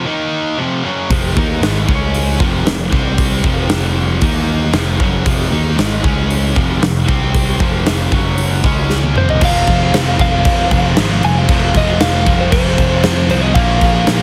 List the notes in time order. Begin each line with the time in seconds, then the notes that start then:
0.06 D#3 A#3 D#4
0.57 F2 C3 F3
0.84 F#2 C#3 F#3
1.10 F1 F2 C3 F3, kick, open hi-hat
1.36 D#2 D#3 A#3 D#4, kick
1.60 G#1 G#2 D#3 G#3, snare, open hi-hat
1.88 C#2 C#3 G#3 C#4, kick
2.14 open hi-hat
2.39 F1 F2 C3 F3, kick
2.65 F1 F2 C3, snare, open hi-hat
2.92 C2 C3 G3 C4, kick
3.18 kick, open hi-hat
3.44 F1 F2 C3 F3, kick
3.70 snare, open hi-hat
4.21 D#2 D#3 A#3 D#4, kick, open hi-hat
4.73 F1 F2 C3 F3, snare, open hi-hat
4.99 F#1 F#2 C#3 F#3, kick
5.24 F1 F2 C3 F3, kick, open hi-hat
5.51 D#2 D#3 A#3 D#4
5.76 G#1 G#2 D#3 G#3, snare, open hi-hat
6.03 C#2 C#3 G#3 C#4, kick
6.30 open hi-hat
6.55 F1 F2 C3 F3, kick
6.81 F1 F2 C3, snare, open hi-hat
7.08 C2 C3 G3 C4, kick
7.35 kick, open hi-hat
7.60 F1 F2 C3 F3, kick
7.86 snare, open hi-hat
8.11 F#1 F#2 C#3 F#3, kick
8.38 open hi-hat
8.64 C#2 C#3 G#3 C#4, kick
8.90 snare
9.03 high tom
9.15 F1 F2 C3 F3 C5, mid tom
9.29 D#5, floor tom
9.41 F1 F2 C3 F3 G#3 C4 F5, kick, crash
9.67 F1, kick, crash
9.94 F1, snare, crash
10.19 F1 F2 C3 F3 G#3 C4 F5, kick, crash
10.45 F2, kick, crash
10.71 F1, kick, crash
10.96 G#1 F2 C3 F3 G#3 C4, snare, crash
11.23 F1 G#5, crash
11.38 F5
11.47 F1 F2 C3 F3 G#3, kick, crash
11.52 C4
11.74 F1 D#5, kick, crash
12.00 F1 F5, snare, crash
12.26 F1 F2 C3 F3 G#3 C4, kick, crash
12.40 C5
12.52 F1 C5, kick, crash
12.78 F1, kick, crash
13.03 F2 C3 F3 G#3, snare, crash
13.08 C4
13.29 C2 C5, crash
13.41 D#5
13.54 A#1 A#2 F3 A#3 F5, kick, crash
13.60 C#4
13.81 A#1, kick, crash
14.07 A#1, snare, crash